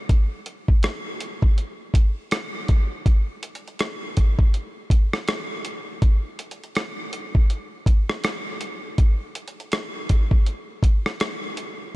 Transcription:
0.09 kick loud
0.09 closed hi-hat medium
0.46 closed hi-hat medium
0.68 kick medium
0.83 cross-stick loud
0.83 closed hi-hat medium
1.20 closed hi-hat medium
1.42 kick medium
1.58 closed hi-hat medium
1.94 kick medium
1.94 closed hi-hat medium
2.31 cross-stick loud
2.31 closed hi-hat medium
2.68 kick medium
2.68 closed hi-hat medium
3.06 kick loud
3.06 closed hi-hat medium
3.43 closed hi-hat medium
3.55 closed hi-hat medium
3.68 closed hi-hat soft
3.79 cross-stick loud
3.79 closed hi-hat medium
4.17 kick medium
4.17 closed hi-hat medium
4.39 kick medium
4.54 closed hi-hat medium
4.90 kick medium
4.90 closed hi-hat medium
5.13 cross-stick loud
5.28 cross-stick loud
5.28 closed hi-hat medium
5.65 closed hi-hat medium
6.02 kick loud
6.02 closed hi-hat medium
6.39 closed hi-hat medium
6.51 closed hi-hat medium
6.64 closed hi-hat soft
6.75 cross-stick loud
6.75 closed hi-hat medium
7.13 closed hi-hat medium
7.35 kick medium
7.50 closed hi-hat medium
7.86 kick loud
7.86 closed hi-hat medium
8.09 cross-stick medium
8.24 cross-stick loud
8.24 closed hi-hat medium
8.61 closed hi-hat medium
8.98 kick loud
8.98 closed hi-hat medium
9.35 closed hi-hat medium
9.48 closed hi-hat medium
9.60 closed hi-hat soft
9.72 cross-stick loud
9.72 closed hi-hat medium
10.09 kick medium
10.09 closed hi-hat medium
10.31 kick medium
10.46 closed hi-hat medium
10.83 kick medium
10.83 closed hi-hat medium
11.06 cross-stick medium
11.20 cross-stick loud
11.20 closed hi-hat medium
11.57 closed hi-hat medium

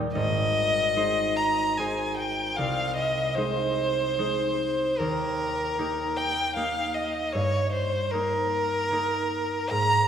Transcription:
0.00 0.15 D#2 medium
0.00 0.17 A#2 medium
0.00 0.17 G3 soft
0.00 0.96 D#4 soft
0.00 0.16 A#4 soft
0.00 3.60 D#5 soft
0.00 0.16 G5 medium
0.00 0.16 A#5 medium
0.13 2.61 G#1 soft
0.13 1.38 D#5 medium
0.96 1.78 G#3 soft
0.96 1.77 D#4 soft
0.96 1.78 C5 soft
1.37 1.79 A#5 medium
1.77 3.36 G#3 soft
1.77 3.37 D#4 soft
1.77 3.37 C5 soft
1.77 2.17 G#5 medium
2.17 2.58 G5 medium
2.57 5.04 C2 soft
2.57 2.96 F5 medium
2.96 3.37 D#5 medium
3.35 4.18 G#3 soft
3.35 4.17 D#4 soft
3.35 5.00 C5 medium
3.35 4.18 C5 soft
4.19 5.03 G#3 soft
4.19 5.78 D#4 soft
4.19 5.03 C5 soft
4.99 7.38 D#2 soft
4.99 6.18 A#4 medium
5.78 6.55 A#3 soft
5.78 6.55 D#4 soft
5.78 6.56 G4 soft
6.17 6.56 G5 medium
6.56 8.12 A#3 soft
6.56 8.12 D#4 soft
6.56 9.74 G4 soft
6.56 6.96 F5 medium
6.95 7.34 D#5 medium
7.32 9.74 G2 medium
7.32 7.71 C#5 medium
7.72 8.12 C5 medium
8.11 8.90 A#3 soft
8.11 8.92 D#4 soft
8.11 9.72 A#4 medium
8.11 8.91 A#4 soft
8.91 9.74 A#3 soft
8.91 10.08 D#4 soft
8.91 9.75 A#4 soft
9.70 10.08 G#2 soft
9.70 10.08 A#5 medium

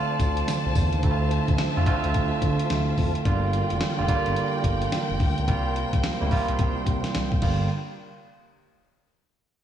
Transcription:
0.00 1.03 D3 medium
0.00 1.03 A3 medium
0.00 1.04 C4 medium
0.00 1.11 F4 loud
0.00 7.38 F4 medium
0.00 3.21 C5 medium
0.00 1.01 D5 medium
0.00 3.21 A5 medium
0.20 0.42 D2 loud
0.20 kick medium
0.20 closed hi-hat medium
0.20 tambourine medium
0.37 closed hi-hat medium
0.48 snare loud
0.48 closed hi-hat medium
0.48 tambourine medium
0.66 0.74 C2 medium
0.75 0.90 E2 medium
0.75 kick loud
0.75 open hi-hat medium
0.75 tambourine medium
0.93 1.02 D#2 loud
0.93 closed hi-hat soft
1.03 1.40 D2 loud
1.03 1.52 D3 medium
1.03 1.52 A3 medium
1.03 1.52 C4 medium
1.03 1.12 E4 medium
1.03 3.23 E5 medium
1.03 kick loud
1.03 closed hi-hat medium
1.11 1.55 F4 loud
1.31 closed hi-hat medium
1.48 1.57 D2 medium
1.48 kick loud
1.48 closed hi-hat medium
1.58 snare loud
1.58 closed hi-hat medium
1.76 1.85 F2 loud
1.76 1.83 D3 medium
1.76 1.83 A3 medium
1.76 1.83 C4 medium
1.76 1.83 F4 medium
1.86 2.62 D3 loud
1.86 2.63 A3 medium
1.86 2.63 C4 medium
1.86 2.63 F4 loud
1.86 kick loud
1.86 closed hi-hat medium
2.04 2.13 D2 loud
2.04 closed hi-hat medium
2.14 2.29 D2 medium
2.14 kick medium
2.14 closed hi-hat medium
2.42 2.56 D3 loud
2.42 kick medium
2.42 closed hi-hat medium
2.59 closed hi-hat medium
2.70 2.93 D2 medium
2.70 snare loud
2.70 closed hi-hat medium
2.98 3.12 F2 loud
2.98 kick medium
2.98 open hi-hat medium
3.15 closed hi-hat soft
3.25 3.62 G1 loud
3.25 3.74 D3 medium
3.25 3.74 G3 medium
3.25 3.74 A#3 medium
3.25 3.74 F4 loud
3.25 7.38 A#4 medium
3.25 5.45 D5 medium
3.25 7.38 G5 medium
3.25 kick loud
3.25 closed hi-hat medium
3.53 closed hi-hat medium
3.70 3.79 F1 medium
3.70 closed hi-hat medium
3.81 snare loud
3.81 closed hi-hat medium
3.98 4.07 F1 medium
3.98 4.05 D3 medium
3.98 4.05 G3 medium
3.98 4.05 A#3 medium
3.98 4.05 F4 medium
4.08 4.84 D3 medium
4.08 4.85 G3 medium
4.08 4.85 A#3 medium
4.08 4.85 F4 loud
4.08 kick loud
4.08 closed hi-hat medium
4.26 4.35 G1 medium
4.26 closed hi-hat soft
4.36 closed hi-hat medium
4.64 4.87 G1 loud
4.64 kick medium
4.64 closed hi-hat medium
4.82 closed hi-hat medium
4.92 snare loud
4.92 closed hi-hat medium
5.10 5.18 F1 medium
5.20 5.34 D2 medium
5.20 kick loud
5.20 open hi-hat medium
5.38 5.47 C#2 medium
5.38 closed hi-hat medium
5.47 5.85 C2 loud
5.47 5.96 C3 loud
5.47 5.96 G3 medium
5.47 5.96 A#3 medium
5.47 5.97 F4 loud
5.47 7.40 C5 medium
5.47 kick loud
5.47 closed hi-hat medium
5.76 closed hi-hat medium
5.93 6.02 C2 medium
5.93 kick medium
5.93 closed hi-hat medium
6.04 snare loud
6.04 closed hi-hat medium
6.20 6.30 D2 loud
6.20 6.27 C3 medium
6.20 6.28 G3 medium
6.20 6.28 A#3 medium
6.20 6.28 E4 medium
6.31 7.07 C3 loud
6.31 7.07 G3 medium
6.31 7.08 A#3 medium
6.31 7.08 F4 loud
6.31 kick loud
6.31 open hi-hat medium
6.48 6.57 C2 loud
6.48 closed hi-hat soft
6.59 6.73 C2 loud
6.59 kick loud
6.59 closed hi-hat medium
6.86 7.01 C3 loud
6.86 kick medium
6.86 closed hi-hat medium
7.04 snare medium
7.04 closed hi-hat medium
7.15 7.37 C2 medium
7.15 snare loud
7.15 closed hi-hat medium
7.32 kick medium
7.42 7.68 G1 loud
7.42 7.68 D3 medium
7.42 7.68 G3 medium
7.42 7.68 A#3 medium
7.42 7.68 F4 medium
7.42 7.68 A#4 medium
7.42 7.68 G5 medium
7.42 kick loud
7.42 crash medium

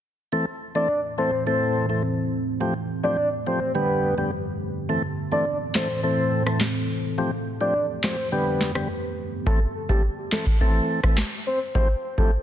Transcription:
0.32 2.59 A2 medium
0.32 0.45 E3 medium
0.32 2.59 E3 medium
0.32 0.45 A3 medium
0.32 2.59 C4 medium
0.32 0.46 C4 medium
0.32 2.59 A4 medium
0.32 0.46 A4 loud
0.75 0.88 E3 medium
0.75 0.88 A3 medium
0.75 0.88 C4 medium
0.75 0.88 A4 medium
0.75 1.01 D5 medium
1.18 1.31 E3 medium
1.18 1.31 A3 medium
1.18 1.31 C4 medium
1.18 1.31 A4 medium
1.18 1.44 C5 medium
1.47 1.86 E3 medium
1.47 1.86 A3 medium
1.47 1.86 C4 medium
1.47 1.86 A4 loud
1.47 1.87 C5 loud
1.89 2.02 E3 medium
1.89 2.03 A3 medium
1.89 2.03 C4 medium
1.89 2.03 A4 medium
2.60 3.74 F2 medium
2.60 2.74 F3 medium
2.60 3.74 F3 medium
2.60 2.74 A3 medium
2.60 3.74 A3 medium
2.60 2.74 C4 medium
2.60 4.87 G4 medium
2.60 2.74 G4 medium
3.04 3.17 F3 medium
3.04 3.17 A3 medium
3.04 3.17 C4 medium
3.04 3.17 G4 medium
3.04 3.29 D5 medium
3.47 3.60 F3 medium
3.47 3.60 A3 medium
3.47 3.60 C4 medium
3.47 3.60 G4 medium
3.47 3.72 C5 medium
3.75 4.88 G2 medium
3.75 4.14 D3 medium
3.75 4.88 D3 medium
3.75 4.15 G3 medium
3.75 4.88 B3 medium
3.75 4.15 B3 medium
3.75 4.15 G4 loud
3.75 4.15 B4 loud
4.18 4.31 D3 medium
4.18 4.31 G3 medium
4.18 4.31 B3 medium
4.18 4.31 G4 medium
4.89 7.16 A2 medium
4.89 5.02 E3 medium
4.89 7.16 E3 medium
4.89 5.02 A3 medium
4.89 7.16 C4 medium
4.89 5.03 C4 medium
4.89 7.16 A4 medium
4.89 5.03 A4 loud
5.32 5.45 E3 medium
5.32 5.45 A3 medium
5.32 5.45 C4 medium
5.32 5.45 A4 medium
5.32 5.58 D5 medium
5.75 5.88 E3 medium
5.75 5.88 A3 medium
5.75 5.88 C4 medium
5.75 5.88 A4 medium
5.75 6.01 C5 medium
5.75 snare loud
5.75 clap loud
6.03 6.43 E3 medium
6.03 6.43 A3 medium
6.03 6.43 C4 medium
6.03 6.43 A4 loud
6.03 6.44 C5 loud
6.46 6.60 E3 medium
6.46 6.60 A3 medium
6.46 6.60 C4 medium
6.46 6.60 A4 medium
6.46 cross-stick medium
6.60 snare loud
6.60 clap medium
7.18 8.31 F2 medium
7.18 7.31 F3 medium
7.18 8.31 F3 medium
7.18 7.31 A3 medium
7.18 8.31 A3 medium
7.18 7.31 C4 medium
7.18 8.31 G4 medium
7.18 7.31 G4 loud
7.61 7.74 F3 medium
7.61 7.74 A3 medium
7.61 7.74 C4 medium
7.61 7.74 G4 medium
7.61 7.86 D5 medium
8.03 8.17 F3 medium
8.03 8.17 A3 medium
8.03 8.17 C4 medium
8.03 8.17 G4 medium
8.03 8.29 C5 medium
8.03 snare loud
8.03 clap medium
8.32 9.46 G2 medium
8.32 8.72 D3 medium
8.32 9.46 D3 medium
8.32 8.72 G3 medium
8.32 8.72 B3 medium
8.32 9.46 B3 medium
8.32 8.72 G4 loud
8.32 9.46 G4 medium
8.32 8.73 B4 loud
8.61 snare medium
8.75 8.88 D3 medium
8.75 8.88 G3 medium
8.75 8.88 B3 medium
8.75 8.88 G4 medium
8.75 cross-stick medium
9.46 9.60 E3 medium
9.46 9.60 A3 medium
9.46 9.60 C4 medium
9.46 9.59 A4 medium
9.46 9.60 A4 medium
9.46 kick loud
9.89 10.02 E3 medium
9.89 10.03 A3 medium
9.89 10.03 C4 medium
9.89 10.02 G4 medium
9.89 10.03 A4 medium
9.89 kick medium
10.32 10.45 E3 medium
10.32 10.45 A3 medium
10.32 10.45 C4 medium
10.32 10.45 A4 medium
10.32 10.46 A4 medium
10.32 snare loud
10.32 clap loud
10.47 kick medium
10.61 11.00 E3 medium
10.61 11.00 A3 medium
10.61 11.00 C4 medium
10.61 11.00 A4 loud
10.61 kick medium
11.04 11.17 E3 medium
11.04 11.17 A3 medium
11.04 11.17 C4 medium
11.04 11.17 A4 medium
11.04 kick medium
11.04 cross-stick medium
11.17 snare loud
11.17 clap medium
11.47 11.59 C5 medium
11.75 11.88 F3 medium
11.75 11.88 A3 medium
11.75 11.88 C4 medium
11.75 11.88 G4 medium
11.75 11.88 C5 loud
11.75 kick loud
12.18 12.31 F3 medium
12.18 12.31 A3 medium
12.18 12.31 C4 medium
12.18 12.31 G4 medium
12.18 12.31 A4 medium
12.18 kick medium

